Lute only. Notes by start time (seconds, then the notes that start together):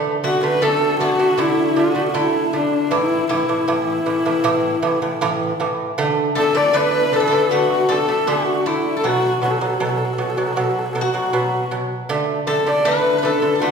Already playing: D3 A3
0.24 D3 A3
0.43 D3 A3
0.62 D3 A3
1.00 D3 A3
1.19 D3 A3
1.38 D3 A3
1.76 D3 A3
1.95 D3 A3
2.14 D3 A3
2.53 D3 A3
2.91 A2 E3
3.30 A2 E3
3.49 A2 E3
3.68 A2 E3
4.06 A2 E3
4.26 A2 E3
4.44 A2 E3
4.82 A2 E3
5.02 A2 E3
5.21 A2 E3
5.60 A2 E3
5.98 D3 A3
6.36 D3 A3
6.55 D3 A3
6.73 D3 A3
7.12 D3 A3
7.31 D3 A3
7.51 D3 A3
7.89 D3 A3
8.08 D3 A3
8.27 D3 A3
8.66 D3 A3
9.04 B2 F#3
9.42 B2 F#3
9.61 B2 F#3
9.80 B2 F#3
10.18 B2 F#3
10.37 B2 F#3
10.56 B2 F#3
10.95 B2 F#3
11.14 B2 F#3
11.33 B2 F#3
11.71 B2 F#3
12.09 D3 A3
12.47 D3 A3
12.66 D3 A3
12.85 D3 A3
13.23 D3 A3
13.42 D3 A3
13.61 D3 A3